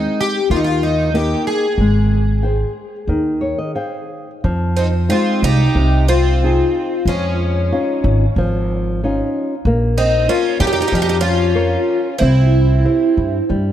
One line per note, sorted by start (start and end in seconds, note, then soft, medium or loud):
0.00 0.38 G#3 soft
0.00 0.37 C4 soft
0.00 0.21 D#4 medium
0.00 0.38 D#4 soft
0.21 0.51 G4 loud
0.50 1.33 D#2 medium
0.50 1.12 D#3 medium
0.50 0.58 F4 medium
0.56 0.63 D#4 medium
0.64 0.83 F4 medium
0.83 1.15 D#4 medium
1.14 1.65 A#3 soft
1.14 1.66 D#4 soft
1.14 1.47 G4 medium
1.14 1.66 G5 medium
1.47 4.07 G#4 medium
1.78 2.62 G#1 medium
1.78 2.42 G#3 medium
2.43 2.96 G#4 soft
2.43 2.96 C5 soft
2.43 2.95 G5 soft
3.07 3.52 D#2 medium
3.07 3.75 D#3 medium
3.41 3.57 C#5 medium
3.58 3.75 D#5 medium
3.75 4.30 G#4 soft
3.75 4.30 C5 soft
3.75 4.40 F5 medium
3.75 4.30 G5 soft
4.44 5.08 F2 medium
4.44 5.08 F3 medium
4.76 4.85 C4 medium
4.76 4.87 D#4 medium
5.09 5.62 G#3 soft
5.09 5.41 C4 medium
5.09 5.62 D#4 soft
5.09 5.62 F4 soft
5.09 5.45 F4 medium
5.43 5.64 C2 medium
5.43 6.06 D#4 medium
5.43 6.09 G4 loud
5.75 6.60 C2 medium
5.75 6.40 C3 medium
6.08 7.02 C4 medium
6.08 7.10 F4 medium
6.44 6.95 D#4 soft
6.44 6.95 F4 soft
6.44 6.95 G#4 soft
7.05 7.70 F2 medium
7.05 7.71 F3 medium
7.05 8.34 G#3 medium
7.05 8.35 C#4 medium
7.72 8.25 C#4 soft
7.72 8.24 D#4 soft
7.72 8.25 F4 medium
8.04 8.25 G#1 medium
8.36 9.20 G#1 medium
8.36 9.00 F3 medium
9.04 9.54 C#4 soft
9.04 9.54 D#4 soft
9.04 9.54 F4 medium
9.65 10.27 A#1 medium
9.65 10.27 A#3 medium
9.98 10.27 C4 medium
9.98 10.30 D#4 medium
10.28 10.58 C#4 medium
10.28 10.60 F4 medium
10.28 10.79 A#4 soft
10.28 10.79 C5 soft
10.28 10.80 C#5 medium
10.60 10.80 F2 medium
10.60 10.66 D#4 medium
10.60 10.66 G4 loud
10.67 10.71 D#4 medium
10.67 10.72 G4 medium
10.73 10.80 D#4 medium
10.73 10.79 G4 medium
10.81 10.87 D#4 medium
10.81 10.86 G4 medium
10.87 10.94 D#4 medium
10.87 10.95 G4 medium
10.92 11.75 F2 medium
10.92 11.54 F3 medium
10.92 11.01 D#4 medium
10.96 11.01 G4 medium
11.02 11.08 D#4 medium
11.02 11.08 G4 medium
11.09 11.17 D#4 medium
11.09 11.16 G4 medium
11.21 12.15 C#4 medium
11.21 12.22 F4 medium
11.55 12.07 A#4 soft
11.55 12.07 C5 soft
11.55 12.07 C#5 medium
12.18 12.83 C2 medium
12.18 13.44 C4 medium
12.18 12.82 C4 medium
12.18 13.44 E4 medium
12.85 13.37 G4 soft
12.85 13.36 C5 soft
12.85 13.37 E5 soft
13.17 13.38 G2 medium
13.49 13.72 G2 medium
13.49 13.72 G3 medium